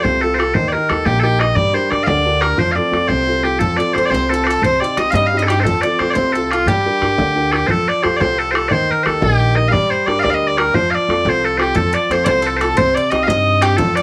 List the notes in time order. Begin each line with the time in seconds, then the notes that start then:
Already playing: F4 G4 A4
0.03 C2 C3 C5, bodhran
0.21 F4 G4 A4
0.35 G4 C5
0.39 F4 A4, bodhran
0.54 D#2 D#3 C5, bodhran
0.68 D5
0.73 D#4 G4 A#4, bodhran
0.89 D#2 D#4 G4 A4 A#4, bodhran
1.05 A#1 A#3 G4, bodhran
1.19 D#4 G4 A4 A#4
1.39 D#4 G4 A#4 D#5, bodhran
1.55 G2 G3 D5, bodhran
1.73 D4 G4 A#4 C5, bodhran
1.90 G2 D4 G4 A#4 D5, bodhran
2.03 D2 D3 D5 F5
2.08 bodhran
2.25 D4 G4 A#4
2.41 D4 G4 A#4, bodhran
2.58 F2 F3 C5, bodhran
2.72 C4 D5 F5
2.76 F4 A4, bodhran
2.91 F2 C4 F4 A4, bodhran
3.08 C2 C3 C5, bodhran
3.27 C4 F4 A4
3.43 C4 F4 G4 A4
3.59 F2 F3 A4, bodhran
3.77 C4 F4 A4 D5, bodhran
3.93 F2 C4 F4 A4 C5, bodhran
3.98 C5
4.06 D5
4.10 C2 C3 C5, bodhran
4.14 C5
4.29 C4 F4 A4
4.34 A4
4.44 C4 F4 A4 C5, bodhran
4.51 A4
4.62 C2 C3 C5, bodhran
4.80 C4 D#4 G4 D5, bodhran
4.97 C2 C4 D#4 G4 D#5, bodhran
5.10 G2 G3 D#5 F5, bodhran
5.15 D#5
5.27 F5
5.33 C4 D#4 G4
5.37 D#5
5.43 A4
5.47 C4 D#4 G4, bodhran
5.60 A4 C5
5.65 F2 F3 A4, bodhran
5.82 C4 F4 A4 D5, bodhran
5.99 F2 C4 F4 A4 C5, bodhran
6.10 C5 D5
6.15 C2 C3 C5, bodhran
6.33 C4 F4 A4
6.51 C4 F4 A4, bodhran
6.66 G2 G3 G4, bodhran
6.86 D4 G4 A#4, bodhran
7.02 G2 D4 G4 A#4, bodhran
7.18 D2 D3, bodhran
7.35 D4 G4 A#4
7.51 D4 G4 A4 A#4, bodhran
7.67 F2 F3 A4 C5, bodhran
7.87 D5, bodhran
8.03 F2 F4 G4 A4 C5, bodhran
8.17 C2 F4 G4 A4 C5 D5
8.21 bodhran
8.39 A4
8.51 F4 G4 A4 C5, bodhran
8.55 A4
8.69 D#2 D#3 C5 D5, bodhran
8.89 A#4, bodhran
9.03 D#2 D#4 G4 A4 A#4 C5, bodhran
9.21 A#1 D#4 G4 A#4, bodhran
9.55 D#4 G4 A#4 D#5
9.68 G3 F5
9.72 G2 D5, bodhran
9.90 C5, bodhran
10.06 G2 D4 G4 A#4 D5, bodhran
10.19 D5 F5
10.23 D2 D4 G4 A#4, bodhran
10.30 F5
10.34 D#5
10.47 D5
10.58 D4 G4 A#4, bodhran
10.74 F2 F3 C5, bodhran
10.91 F5, bodhran
10.95 D5
11.08 F2 C4 F4 A4, bodhran
11.25 C2 C4 F4 A4, bodhran
11.29 C5
11.45 A4
11.58 C4 F4 G4 A4 C5, bodhran
11.75 F2 F3 A4, bodhran
11.93 D5, bodhran
12.10 F2 C4 F4 A4 C5, bodhran
12.25 C2 C4 F4 A4 C5 D5, bodhran
12.42 A4
12.47 A4
12.57 C5
12.61 C4 F4 A4, bodhran
12.77 C2 C3 C5, bodhran
12.95 D5, bodhran
13.11 C2 C4 D#4 G4 D#5, bodhran
13.23 F5
13.27 G2 C4 D#4 G4 D#5, bodhran
13.61 C4 D#4 G4, bodhran
13.77 F2 F3 A4, bodhran
13.96 D5, bodhran